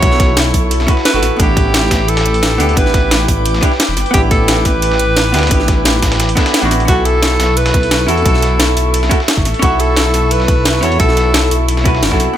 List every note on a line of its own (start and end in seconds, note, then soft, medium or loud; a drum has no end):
0.00 0.53 B1 loud
0.00 0.85 C#4 medium
0.00 0.86 E4 medium
0.00 0.87 F#4 medium
0.00 1.36 A4 medium
0.00 0.54 C#5 loud
0.00 1.36 E5 medium
0.00 1.36 C#6 medium
0.00 kick loud
0.00 closed hi-hat medium
0.06 0.88 A4 medium
0.12 snare soft
0.20 kick loud
0.20 snare soft
0.20 closed hi-hat medium
0.37 snare loud
0.37 closed hi-hat medium
0.54 0.87 B1 medium
0.54 kick medium
0.54 closed hi-hat medium
0.54 open hi-hat medium
0.71 closed hi-hat medium
0.80 snare medium
0.80 snare soft
0.87 1.11 C#4 medium
0.87 1.12 E4 medium
0.87 1.13 F#4 medium
0.87 1.13 B4 medium
0.87 kick loud
0.87 closed hi-hat medium
0.97 snare soft
1.05 1.42 B4 loud
1.05 snare loud
1.05 closed hi-hat medium
1.13 1.22 F#1 medium
1.13 1.36 C#4 medium
1.13 1.38 E4 medium
1.13 1.38 F#4 medium
1.13 1.39 A4 medium
1.13 snare soft
1.23 1.31 A1 medium
1.23 snare soft
1.23 closed hi-hat medium
1.23 open hi-hat medium
1.36 1.90 A1 loud
1.36 2.56 B3 medium
1.36 2.57 D4 medium
1.36 2.10 G4 loud
1.36 6.84 B4 medium
1.36 6.85 G5 medium
1.36 6.85 D6 loud
1.36 kick loud
1.36 closed hi-hat medium
1.41 2.58 E4 medium
1.41 2.59 G4 medium
1.57 kick loud
1.57 closed hi-hat medium
1.74 snare loud
1.74 closed hi-hat medium
1.91 2.24 A1 medium
1.91 kick medium
1.91 snare loud
1.91 snare soft
1.91 closed hi-hat medium
1.91 open hi-hat medium
2.08 2.79 A4 loud
2.08 closed hi-hat medium
2.17 snare loud
2.17 closed hi-hat medium
2.25 2.58 A1 medium
2.25 closed hi-hat medium
2.34 closed hi-hat medium
2.43 snare loud
2.43 closed hi-hat medium
2.58 2.75 D2 medium
2.58 2.72 B3 medium
2.58 2.75 D4 medium
2.58 2.75 E4 medium
2.58 2.76 G4 medium
2.58 snare soft
2.58 closed hi-hat medium
2.58 open hi-hat medium
2.69 closed hi-hat soft
2.74 3.27 A1 loud
2.74 3.59 B3 medium
2.74 3.60 D4 medium
2.74 3.46 B4 loud
2.74 kick loud
2.74 closed hi-hat medium
2.78 3.61 E4 medium
2.78 3.61 G4 medium
2.86 snare soft
2.94 kick loud
2.94 snare soft
2.94 closed hi-hat medium
3.11 snare loud
3.11 closed hi-hat medium
3.28 3.61 A1 medium
3.28 kick medium
3.28 closed hi-hat medium
3.28 open hi-hat medium
3.46 closed hi-hat medium
3.54 snare medium
3.54 snare soft
3.61 3.64 B3 medium
3.61 3.71 D4 medium
3.61 3.71 E4 medium
3.61 3.72 G4 loud
3.61 kick loud
3.61 closed hi-hat medium
3.72 snare soft
3.80 snare loud
3.80 closed hi-hat loud
3.80 closed hi-hat medium
3.89 3.96 E1 medium
3.97 4.05 G1 medium
3.97 snare soft
3.97 closed hi-hat medium
3.97 open hi-hat medium
4.06 closed hi-hat soft
4.11 4.64 A1 loud
4.11 5.30 B3 medium
4.11 5.32 D4 medium
4.11 4.22 G4 loud
4.11 kick loud
4.11 closed hi-hat loud
4.11 closed hi-hat medium
4.15 5.33 E4 medium
4.15 5.34 G4 medium
4.31 4.67 A4 loud
4.31 kick loud
4.31 closed hi-hat medium
4.48 snare loud
4.48 closed hi-hat loud
4.48 closed hi-hat medium
4.65 4.98 A1 medium
4.65 6.54 B4 loud
4.65 kick medium
4.65 snare soft
4.65 closed hi-hat medium
4.65 open hi-hat medium
4.82 closed hi-hat medium
4.92 snare medium
4.99 5.33 A1 medium
4.99 closed hi-hat medium
5.17 snare loud
5.17 closed hi-hat medium
5.32 5.49 D2 medium
5.32 5.47 B3 medium
5.32 5.49 D4 medium
5.32 5.49 E4 medium
5.32 5.50 G4 medium
5.32 snare medium
5.32 closed hi-hat medium
5.32 open hi-hat medium
5.39 snare medium
5.39 closed hi-hat medium
5.43 snare medium
5.43 closed hi-hat medium
5.47 6.33 B3 medium
5.47 6.34 D4 medium
5.47 snare medium
5.47 closed hi-hat medium
5.51 6.01 A1 loud
5.51 6.35 E4 medium
5.51 6.36 G4 medium
5.51 kick loud
5.51 closed hi-hat loud
5.51 closed hi-hat medium
5.60 snare soft
5.68 kick loud
5.68 snare soft
5.68 closed hi-hat medium
5.85 snare loud
5.85 closed hi-hat loud
5.85 closed hi-hat medium
6.02 6.36 A1 medium
6.02 kick medium
6.02 snare loud
6.02 snare soft
6.02 closed hi-hat medium
6.02 open hi-hat medium
6.12 snare loud
6.12 closed hi-hat medium
6.20 snare loud
6.20 closed hi-hat medium
6.29 closed hi-hat medium
6.35 6.60 B3 medium
6.35 6.61 D4 medium
6.35 6.61 E4 medium
6.35 6.62 A4 medium
6.35 kick loud
6.35 snare loud
6.35 closed hi-hat medium
6.46 snare loud
6.46 closed hi-hat medium
6.54 snare loud
6.54 closed hi-hat medium
6.54 closed hi-hat loud
6.61 6.87 A1 medium
6.61 6.85 B3 medium
6.61 6.86 D4 medium
6.61 6.86 E4 medium
6.61 6.87 F#4 loud
6.71 snare soft
6.71 closed hi-hat medium
6.71 open hi-hat medium
6.80 closed hi-hat soft
6.85 7.38 B1 loud
6.85 8.05 C#4 medium
6.85 8.06 E4 medium
6.85 7.07 F#4 loud
6.85 12.33 A4 medium
6.85 12.33 E5 medium
6.85 12.33 C#6 loud
6.85 kick loud
6.85 closed hi-hat loud
6.85 closed hi-hat medium
6.90 8.07 F#4 medium
6.90 8.08 A4 medium
7.05 7.59 A4 loud
7.05 closed hi-hat medium
7.23 snare loud
7.23 closed hi-hat medium
7.23 closed hi-hat loud
7.40 7.73 B1 medium
7.40 snare loud
7.40 snare medium
7.40 closed hi-hat medium
7.40 open hi-hat medium
7.57 8.10 B4 loud
7.57 closed hi-hat medium
7.66 snare loud
7.66 closed hi-hat medium
7.74 8.07 B1 medium
7.74 kick loud
7.74 closed hi-hat medium
7.83 closed hi-hat medium
7.91 snare loud
7.91 closed hi-hat loud
7.91 closed hi-hat medium
8.06 8.24 E2 medium
8.06 8.21 C#4 medium
8.06 8.23 E4 medium
8.06 8.24 F#4 medium
8.06 8.77 A4 loud
8.06 8.24 A4 loud
8.06 snare medium
8.06 closed hi-hat medium
8.06 open hi-hat medium
8.17 closed hi-hat soft
8.22 8.76 B1 loud
8.22 9.08 C#4 medium
8.22 9.09 E4 medium
8.22 kick loud
8.22 closed hi-hat loud
8.22 closed hi-hat medium
8.27 9.10 F#4 medium
8.27 9.11 A4 medium
8.34 snare soft
8.42 snare soft
8.42 closed hi-hat medium
8.60 snare loud
8.60 closed hi-hat loud
8.60 closed hi-hat medium
8.77 9.10 B1 medium
8.77 closed hi-hat medium
8.77 open hi-hat medium
8.94 closed hi-hat medium
9.03 snare medium
9.03 snare soft
9.09 9.18 C#4 loud
9.09 9.19 E4 medium
9.09 9.20 F#4 medium
9.09 9.20 A4 loud
9.09 kick loud
9.09 closed hi-hat medium
9.20 snare soft
9.28 snare loud
9.28 closed hi-hat medium
9.37 9.45 F#1 medium
9.37 kick medium
9.45 9.54 A1 medium
9.45 snare medium
9.45 closed hi-hat medium
9.45 open hi-hat medium
9.54 closed hi-hat soft
9.59 10.13 B1 loud
9.59 10.79 C#4 medium
9.59 10.80 E4 medium
9.59 9.82 F#4 loud
9.59 kick loud
9.59 closed hi-hat medium
9.64 10.81 F#4 medium
9.64 10.82 A4 medium
9.80 10.33 A4 loud
9.80 closed hi-hat medium
9.97 snare loud
9.97 closed hi-hat medium
10.14 10.47 B1 medium
10.14 snare soft
10.14 closed hi-hat medium
10.14 open hi-hat medium
10.31 10.84 B4 loud
10.31 closed hi-hat medium
10.40 snare medium
10.48 10.81 B1 medium
10.48 kick loud
10.48 closed hi-hat medium
10.65 snare loud
10.65 closed hi-hat loud
10.65 closed hi-hat medium
10.81 10.98 E2 medium
10.81 10.95 C#4 medium
10.81 10.97 E4 medium
10.81 10.98 F#4 medium
10.81 10.99 A4 medium
10.81 10.99 C#5 loud
10.81 snare medium
10.81 closed hi-hat medium
10.81 open hi-hat medium
10.92 closed hi-hat soft
10.96 11.50 B1 loud
10.96 11.82 C#4 medium
10.96 11.83 E4 medium
10.96 11.64 A4 loud
10.96 kick loud
10.96 closed hi-hat medium
11.01 11.84 F#4 medium
11.01 11.85 A4 medium
11.09 snare soft
11.17 snare soft
11.17 closed hi-hat medium
11.34 snare loud
11.34 closed hi-hat medium
11.51 12.04 B1 medium
11.51 closed hi-hat medium
11.51 open hi-hat medium
11.68 closed hi-hat medium
11.68 closed hi-hat loud
11.77 snare medium
11.77 snare soft
11.84 12.09 C#4 medium
11.84 12.09 E4 medium
11.84 12.10 F#4 medium
11.84 12.10 B4 loud
11.84 kick loud
11.84 closed hi-hat medium
11.95 snare soft
12.03 12.11 F#1 medium
12.03 snare loud
12.03 closed hi-hat medium
12.10 12.19 A1 loud
12.10 12.33 C#4 medium
12.10 12.35 E4 medium
12.10 12.35 F#4 medium
12.10 12.36 A4 loud
12.10 kick medium
12.10 snare soft
12.20 12.28 B1 medium
12.20 snare soft
12.20 closed hi-hat medium
12.20 open hi-hat medium
12.33 12.37 B3 medium